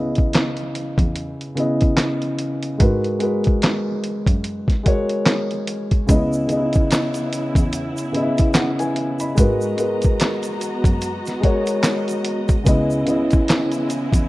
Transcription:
Already playing: C#2 C#3 B3 E4 D#5
0.15 kick, closed hi-hat
0.33 snare, clap, closed hi-hat
0.57 closed hi-hat
0.75 closed hi-hat
0.98 E2, kick, closed hi-hat
1.16 closed hi-hat
1.41 closed hi-hat
1.55 C#3 B3 E4, closed hi-hat
1.59 D#5
1.81 kick, closed hi-hat
1.97 snare, clap, closed hi-hat
2.22 closed hi-hat
2.39 closed hi-hat
2.63 closed hi-hat
2.78 G#2 G#3 F#4 A#4, kick, closed hi-hat
2.82 B4
3.04 closed hi-hat
3.19 G#3 F#4 A#4, closed hi-hat
3.23 B4
3.44 kick, closed hi-hat
3.62 snare, clap, closed hi-hat
4.04 closed hi-hat
4.27 F#2, kick, closed hi-hat
4.44 closed hi-hat
4.68 kick, snare, closed hi-hat
4.83 G#3 F#4 A#4, kick, closed hi-hat
4.88 C#5
5.09 closed hi-hat
5.26 snare, clap, closed hi-hat
5.51 closed hi-hat
5.67 closed hi-hat
5.91 kick, closed hi-hat
6.07 C#2 C#3 B3 E4, kick, closed hi-hat, shaker
6.11 D#5
6.33 shaker
6.47 C#3 B3 D#4, closed hi-hat, shaker
6.52 D#5
6.57 E4
6.73 kick, closed hi-hat, shaker
6.91 snare, clap, closed hi-hat, shaker
7.14 closed hi-hat, shaker
7.33 closed hi-hat, shaker
7.55 E2, kick, closed hi-hat, shaker
7.73 closed hi-hat, shaker
7.97 closed hi-hat, shaker
8.12 C#3 B3 E4, closed hi-hat
8.16 D#5
8.23 E5
8.38 kick, closed hi-hat, shaker
8.54 F#5, snare, clap, closed hi-hat, shaker
8.79 B4 G#5, closed hi-hat, shaker
8.96 closed hi-hat
9.20 D#5 B5, closed hi-hat, shaker
9.35 G#2 G#3 B3 F#4 A#4 D#5 A#5, kick, closed hi-hat, shaker
9.39 B4
9.61 shaker
9.76 G#3 F#4 A#4, closed hi-hat, shaker
9.81 B4
10.02 kick, closed hi-hat, shaker
10.20 snare, clap, closed hi-hat, shaker
10.43 closed hi-hat, shaker
10.61 closed hi-hat, shaker
10.84 F#2, kick, closed hi-hat, shaker
11.02 closed hi-hat, shaker
11.26 snare, closed hi-hat, shaker
11.40 G#3 F#4 A#4, kick, closed hi-hat
11.45 C#5
11.67 closed hi-hat, shaker
11.83 snare, clap, closed hi-hat, shaker
12.08 closed hi-hat, shaker
12.25 closed hi-hat
12.49 kick, closed hi-hat, shaker
12.64 C#2 C#3 G#3 B3 E4, kick, closed hi-hat, shaker
12.68 D#5
12.91 shaker
13.05 C#3 B3 E4, closed hi-hat, shaker
13.09 D#5
13.31 kick, closed hi-hat, shaker
13.48 snare, clap, closed hi-hat, shaker
13.72 closed hi-hat, shaker
13.90 closed hi-hat, shaker
14.13 E2, kick, closed hi-hat, shaker

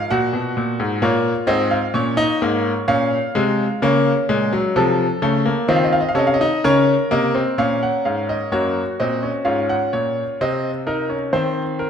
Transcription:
Already playing: F3 F5
0.10 A#2 F#4 F#5
0.33 B2
0.57 A#2
0.80 G#2
1.02 A#2 A#3 F4 C#5
1.47 G#2 C4 D#5
1.71 F5
1.94 A#2 C#4 C#5
2.17 D#4
2.42 G#2 A#3
2.88 A#2 C#4 F5
3.35 C3 G#3
3.82 C#3 A#3 C#4
4.29 A#2 G#3
4.53 F#3
4.76 C3 F3 A4
5.22 C#3 A3
5.46 A#3
5.68 D#3 C4 F4 D#5
5.76 F5
5.84 D#5
5.93 F5
6.01 D#5
6.09 F5
6.15 C3 C#4 A4 D#5
6.27 F5
6.34 D#5
6.41 D#4
6.64 C#3 C#4 A#4 C#5
7.11 C3 A#3 D#5
7.35 C4
7.58 A#2 C#4 F5
7.83 F#5
8.05 G#2 F5
8.29 D#5
8.52 F#2 A#3 F#4 C#5
9.00 A#2 C4 D#5
9.23 C#4
9.45 G#2 C#4 F4 F5
9.69 F#5
9.93 A#2 C#5
10.41 C3 C4 D#5
10.87 D#4 A#4
11.09 C#4
11.33 D#3 C4 C5
11.79 A#4

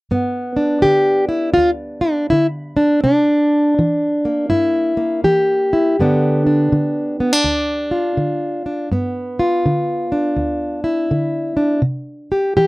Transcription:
0.11 G2 B3
0.57 D4
0.82 D3 G4
1.29 E4
1.54 D2 F4
2.01 D4
2.30 D3 E4
2.77 D4
3.04 C3 D4
3.79 E3
4.25 A#3
4.50 G2 E4
4.97 A#3
5.24 E3 G4
5.73 E4
6.00 G2 D3 B3 D4
6.47 D4
6.72 D3
7.20 B3
7.33 D4
7.44 D2
7.91 F4
8.17 D3
8.66 D4
8.92 G2 B3
9.39 F4
9.66 D3
10.12 D4
10.36 D2
10.84 E4
11.11 D3
11.57 D4
11.82 C3
12.32 G4
12.57 E3 G4

